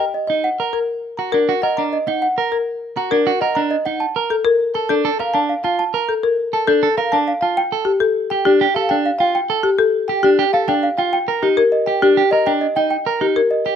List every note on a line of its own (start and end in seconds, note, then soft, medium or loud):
0.00 0.19 G5 medium
0.14 0.34 D#5 soft
0.27 0.49 D#4 soft
0.27 0.48 D#5 medium
0.44 0.63 F#5 medium
0.60 0.79 A#4 medium
0.73 0.93 A#4 medium
1.17 1.38 F#4 soft
1.17 1.37 A#5 soft
1.32 1.53 D4 soft
1.32 1.52 A#4 medium
1.49 1.63 F#4 medium
1.62 1.82 A#4 medium
1.62 1.82 D#5 medium
1.62 1.82 F#5 medium
1.77 1.97 D4 medium
1.77 1.97 A#5 medium
1.93 2.12 D#5 medium
2.07 2.27 D#4 soft
2.07 2.27 F#5 medium
2.07 2.21 F#5 medium
2.22 2.42 F#5 medium
2.38 2.57 A#4 medium
2.52 2.71 A#4 medium
2.96 3.16 F#4 medium
2.96 3.16 A#5 medium
3.11 3.31 D4 medium
3.11 3.31 A#4 medium
3.27 3.41 F#4 medium
3.41 3.61 A#4 medium
3.41 3.61 D#5 medium
3.41 3.61 F#5 medium
3.55 3.76 D4 medium
3.55 3.75 A#5 medium
3.71 3.90 D#5 medium
3.86 4.05 D#4 soft
3.86 4.05 F#5 medium
4.00 4.20 A5 medium
4.16 4.35 A#4 medium
4.30 4.50 A4 medium
4.45 4.64 A#4 medium
4.74 4.94 A4 medium
4.74 4.94 A5 medium
4.89 5.09 D4 medium
4.89 5.09 A4 medium
5.05 5.20 A4 medium
5.20 5.39 A#4 medium
5.20 5.39 F5 medium
5.34 5.54 D4 medium
5.34 5.53 A5 medium
5.49 5.69 F5 medium
5.64 5.83 F4 medium
5.64 5.83 F5 medium
5.64 5.78 A5 medium
5.79 5.98 A5 medium
5.94 6.13 A#4 medium
6.09 6.28 A4 medium
6.23 6.43 A#4 medium
6.53 6.72 A4 medium
6.53 6.73 A5 medium
6.67 6.87 D4 medium
6.67 6.87 A4 medium
6.83 6.97 A4 medium
6.97 7.17 A#4 medium
6.97 7.17 F5 medium
7.12 7.32 D4 medium
7.12 7.32 A5 medium
7.28 7.47 F5 medium
7.41 7.62 F4 medium
7.41 7.61 F5 medium
7.41 7.62 A5 medium
7.57 7.76 G5 medium
7.72 7.91 A4 medium
7.85 8.05 G4 medium
8.00 8.20 A4 medium
8.30 8.51 G4 medium
8.30 8.50 G5 medium
8.45 8.66 D4 medium
8.45 8.65 G4 medium
8.61 8.76 G4 medium
8.75 8.95 A4 medium
8.75 8.95 F5 medium
8.89 9.10 D4 medium
8.89 9.09 G5 medium
9.06 9.25 F5 medium
9.19 9.40 F4 medium
9.19 9.39 F5 medium
9.19 9.34 G5 medium
9.35 9.54 G5 medium
9.50 9.69 A4 medium
9.63 9.84 G4 medium
9.79 9.99 A4 medium
10.08 10.29 G4 medium
10.08 10.28 G5 medium
10.23 10.44 D4 medium
10.23 10.43 G4 medium
10.39 10.53 G4 medium
10.53 10.73 A4 medium
10.53 10.73 F5 medium
10.68 10.88 D4 medium
10.68 10.88 G5 medium
10.83 11.03 F5 medium
10.98 11.18 F4 medium
10.98 11.18 F5 medium
10.98 11.12 G5 medium
11.13 11.33 G5 medium
11.28 11.48 A#4 medium
11.43 11.62 D#4 medium
11.43 11.62 G4 medium
11.57 11.77 A#4 medium
11.72 11.92 D#5 medium
11.86 12.07 G4 medium
11.86 12.07 G5 medium
12.02 12.22 D4 medium
12.02 12.22 G4 medium
12.17 12.32 G4 medium
12.31 12.52 A#4 medium
12.31 12.51 D#5 medium
12.46 12.66 D4 medium
12.46 12.66 G5 medium
12.61 12.81 D#5 medium
12.76 12.96 D#4 medium
12.76 12.96 D#5 medium
12.76 12.89 G5 medium
12.90 13.11 G5 medium
13.06 13.26 A#4 medium
13.21 13.41 D#4 medium
13.21 13.41 G4 medium
13.36 13.56 A#4 medium
13.51 13.70 D#5 medium
13.66 13.76 G4 medium
13.66 13.76 G5 medium